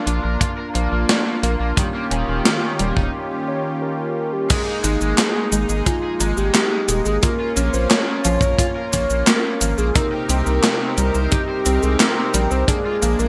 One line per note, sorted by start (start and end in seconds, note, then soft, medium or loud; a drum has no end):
0.00 4.46 A#3 medium
0.00 1.74 D4 medium
0.00 4.46 F4 medium
0.07 0.20 A#1 medium
0.07 0.39 D4 medium
0.07 0.20 F4 loud
0.07 closed hi-hat medium
0.24 0.37 A#1 medium
0.24 0.37 A#4 medium
0.41 0.69 A#3 medium
0.41 0.49 F4 loud
0.41 kick loud
0.41 closed hi-hat medium
0.58 0.66 A#4 medium
0.75 0.88 A#1 medium
0.75 0.92 F3 medium
0.75 0.88 A#3 loud
0.75 closed hi-hat medium
0.92 1.05 A#1 medium
0.92 1.05 A#3 medium
1.09 1.18 A#3 loud
1.09 1.42 D4 medium
1.09 snare loud
1.09 closed hi-hat medium
1.26 1.35 A#3 loud
1.43 1.56 A#1 loud
1.43 1.60 A#3 loud
1.43 1.52 A#3 loud
1.43 closed hi-hat medium
1.60 1.73 A#1 medium
1.60 1.69 A#3 medium
1.77 4.47 D#3 medium
1.77 1.86 D#3 medium
1.77 2.10 G3 medium
1.77 4.47 C#4 medium
1.77 4.47 G4 medium
1.77 kick loud
1.77 closed hi-hat medium
1.94 2.03 A#3 medium
2.11 2.24 D#1 loud
2.11 2.24 D#3 medium
2.11 2.28 C#4 medium
2.11 closed hi-hat medium
2.28 2.41 D#1 medium
2.28 2.41 D#3 medium
2.45 2.54 D#3 loud
2.45 2.74 A#3 medium
2.45 snare loud
2.45 closed hi-hat medium
2.63 2.71 D#3 loud
2.79 2.92 D#1 medium
2.79 3.08 G3 medium
2.79 2.92 A#3 loud
2.79 closed hi-hat medium
2.96 3.10 D#1 medium
2.96 3.09 D#4 medium
2.96 kick loud
3.48 3.62 C#5 medium
3.82 4.34 A#4 loud
4.33 4.49 G4 medium
4.50 7.20 G#3 medium
4.50 4.58 G#3 loud
4.50 7.20 A#3 medium
4.50 7.20 D#4 medium
4.50 5.82 G#4 loud
4.50 4.78 G#4 loud
4.50 kick loud
4.50 closed hi-hat medium
4.50 crash loud
4.50 shaker soft
4.67 4.75 D#4 medium
4.84 4.97 G#1 loud
4.84 4.97 G#3 loud
4.84 5.01 D#4 medium
4.84 closed hi-hat medium
4.84 shaker medium
5.01 5.14 G#1 medium
5.01 5.14 G#3 medium
5.01 shaker soft
5.18 5.27 G#3 loud
5.18 5.35 A#3 medium
5.18 snare loud
5.18 clap loud
5.18 closed hi-hat loud
5.18 shaker soft
5.35 5.44 G#3 loud
5.52 5.65 G#1 medium
5.52 5.69 G#3 medium
5.52 5.65 D#4 loud
5.52 closed hi-hat medium
5.52 shaker medium
5.69 5.82 G#1 medium
5.69 5.82 G#4 medium
5.69 shaker soft
5.86 5.95 D#4 loud
5.86 6.39 F4 loud
5.86 6.15 G#4 loud
5.86 kick loud
5.86 closed hi-hat medium
5.86 shaker soft
6.03 6.12 G#4 medium
6.20 6.33 G#1 loud
6.20 6.33 G#3 loud
6.20 6.37 D#4 medium
6.20 closed hi-hat medium
6.20 shaker medium
6.37 6.50 G#1 medium
6.37 6.50 G#3 medium
6.37 6.53 G4 medium
6.37 shaker soft
6.54 6.63 G#3 loud
6.54 6.83 A#3 medium
6.54 7.02 G4 loud
6.54 snare loud
6.54 clap medium
6.54 closed hi-hat medium
6.54 shaker soft
6.71 6.80 G#3 loud
6.88 7.02 D#1 loud
6.88 6.97 G#3 loud
6.88 7.17 G#3 medium
6.88 closed hi-hat medium
6.88 shaker medium
7.05 7.19 G#1 medium
7.05 7.14 G#3 medium
7.05 7.24 G#4 medium
7.05 shaker soft
7.22 7.31 A#3 loud
7.22 9.93 A#3 medium
7.22 9.93 C#4 medium
7.22 7.51 F4 loud
7.22 9.93 F4 medium
7.22 7.75 A#4 loud
7.22 kick loud
7.22 closed hi-hat medium
7.22 shaker soft
7.40 7.48 F4 medium
7.57 7.70 A#1 loud
7.57 7.69 A#3 loud
7.57 7.89 C#4 medium
7.57 closed hi-hat medium
7.57 shaker medium
7.73 7.87 A#1 medium
7.73 7.87 A#3 medium
7.73 7.92 C5 loud
7.73 shaker soft
7.90 7.99 A#3 loud
7.90 8.19 A#3 medium
7.90 8.92 C#5 loud
7.90 snare loud
7.90 clap loud
7.90 closed hi-hat loud
7.90 shaker soft
8.08 8.16 A#3 loud
8.25 8.38 A#1 medium
8.25 8.53 F3 loud
8.25 8.38 F4 loud
8.25 closed hi-hat medium
8.25 shaker medium
8.41 8.54 A#1 medium
8.41 8.55 A#4 medium
8.41 kick loud
8.41 shaker soft
8.59 8.67 F4 loud
8.59 8.87 F4 loud
8.59 kick loud
8.59 closed hi-hat loud
8.59 shaker soft
8.76 8.84 A#4 medium
8.93 9.06 A#1 loud
8.93 9.06 A#3 loud
8.93 9.10 C#4 medium
8.93 9.28 C#5 loud
8.93 kick medium
8.93 closed hi-hat medium
8.93 shaker medium
9.10 9.23 A#1 medium
9.10 9.23 A#3 medium
9.10 shaker soft
9.27 9.36 A#3 loud
9.27 9.44 A#3 medium
9.27 9.79 A#4 loud
9.27 snare loud
9.27 clap loud
9.27 closed hi-hat medium
9.27 shaker soft
9.44 9.53 A#3 loud
9.61 9.74 G#1 medium
9.61 9.78 F3 medium
9.61 9.70 A#3 loud
9.61 closed hi-hat medium
9.61 shaker medium
9.78 9.91 A#1 medium
9.78 9.87 A#3 medium
9.78 9.96 G#4 loud
9.78 shaker soft
9.95 12.65 C3 medium
9.95 12.65 C4 medium
9.95 10.04 C4 loud
9.95 12.65 D#4 medium
9.95 10.24 D#4 loud
9.95 12.65 G4 medium
9.95 11.31 A#4 loud
9.95 12.65 A#4 medium
9.95 kick loud
9.95 closed hi-hat medium
9.95 shaker soft
10.12 10.21 G4 medium
10.29 10.42 C2 loud
10.29 10.42 C4 loud
10.29 10.47 C4 medium
10.29 closed hi-hat medium
10.29 shaker medium
10.46 10.60 C2 medium
10.46 10.59 C4 medium
10.46 shaker soft
10.63 10.92 A#3 medium
10.63 10.72 C4 loud
10.63 snare loud
10.63 clap medium
10.63 closed hi-hat loud
10.63 shaker soft
10.80 10.89 C4 loud
10.98 11.11 C2 medium
10.98 11.26 G3 medium
10.98 11.10 G4 loud
10.98 closed hi-hat medium
10.98 shaker medium
11.15 11.28 C2 medium
11.15 11.27 C5 medium
11.15 shaker soft
11.31 11.60 D#4 loud
11.31 11.84 G4 loud
11.31 11.40 G4 loud
11.31 kick loud
11.31 closed hi-hat medium
11.31 shaker soft
11.49 11.57 C5 medium
11.66 11.79 C2 loud
11.66 11.98 C4 medium
11.66 11.79 C4 loud
11.66 closed hi-hat medium
11.66 shaker medium
11.82 11.96 C2 medium
11.82 11.96 C4 medium
11.82 12.01 G#4 medium
11.82 shaker soft
12.00 12.28 A#3 medium
12.00 12.09 C4 loud
12.00 12.52 A#4 loud
12.00 snare loud
12.00 clap medium
12.00 closed hi-hat medium
12.00 shaker soft
12.17 12.26 C4 loud
12.34 12.47 A#1 medium
12.34 12.62 G3 loud
12.34 12.43 C4 loud
12.34 closed hi-hat medium
12.34 shaker medium
12.51 12.64 C2 medium
12.51 12.60 C4 medium
12.51 12.68 C5 loud
12.51 shaker soft
12.68 13.28 G#3 medium
12.68 13.28 A#3 medium
12.68 12.77 A#3 loud
12.68 13.28 D4 medium
12.68 12.96 D4 loud
12.68 13.21 G#4 loud
12.68 kick loud
12.68 closed hi-hat medium
12.68 shaker soft
12.85 12.94 F4 medium
13.02 13.15 A#1 loud
13.02 13.19 A#3 medium
13.02 13.15 A#3 loud
13.02 closed hi-hat medium
13.02 shaker medium
13.19 13.28 A#1 medium
13.19 13.28 A#3 medium
13.19 13.28 A#4 loud
13.19 shaker soft